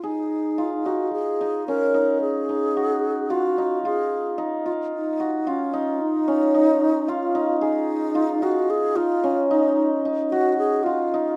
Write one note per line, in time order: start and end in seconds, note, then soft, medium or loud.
0.03 0.87 D#4 medium
0.03 3.07 G#4 medium
0.58 2.83 F4 medium
0.85 1.40 D#4 medium
0.85 1.12 F#4 medium
1.13 1.64 G#4 medium
1.41 1.94 D#4 medium
1.68 5.54 C#4 medium
1.68 2.19 A#4 medium
1.94 2.49 D#4 medium
2.21 3.32 G#4 medium
2.49 3.58 D#4 medium
2.77 3.36 F#4 medium
3.30 3.85 F4 medium
3.30 3.84 F#4 medium
3.58 4.37 D#4 medium
3.85 4.65 F4 medium
3.85 4.35 G#4 medium
4.38 5.73 D#4 medium
4.66 4.72 F4 medium
4.66 5.26 F4 medium
4.94 5.49 D#4 medium
5.20 5.53 F#4 medium
5.47 6.03 C#4 medium
5.47 7.08 F4 medium
5.73 6.54 D#4 medium
6.02 7.11 D#4 medium
6.28 9.23 C#4 medium
6.54 7.34 D#4 medium
7.08 8.15 F4 medium
7.08 7.60 F4 medium
7.35 8.42 D#4 medium
7.61 8.44 D#4 medium
7.61 10.65 G#4 medium
8.15 10.38 F4 medium
8.42 8.96 D#4 medium
8.42 8.72 F#4 medium
8.70 8.97 G#4 medium
8.96 9.50 D#4 medium
8.96 9.51 F4 medium
9.24 11.36 C#4 medium
9.51 10.05 D#4 medium
9.51 10.02 D#4 medium
10.05 11.13 D#4 medium
10.31 10.57 F#4 medium
10.31 10.92 F#4 medium
10.58 10.85 G#4 medium
10.83 11.36 F4 medium
11.14 11.36 D#4 medium